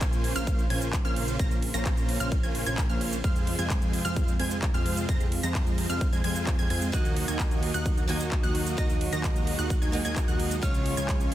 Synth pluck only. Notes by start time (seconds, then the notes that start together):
Already playing: G#6
0.36 F6
0.70 G#6
1.05 F6
1.39 A#6
1.74 A#6
2.20 F6
2.43 G#6
2.67 G#6
2.90 F6
3.24 F6
3.59 G#6
4.05 F6
4.40 G#6
4.74 F6
5.09 A#6
5.43 A#6
5.90 F6
6.13 G#6
6.24 G#6
6.59 G#6
6.70 G#6
6.93 F#6
7.28 G#6
7.74 F#6
8.09 G#6
8.43 F#6
8.78 A#6
9.13 A#6
9.59 F#6
9.82 G#6
10.05 G#6
10.28 F#6
10.63 F6
10.97 G#6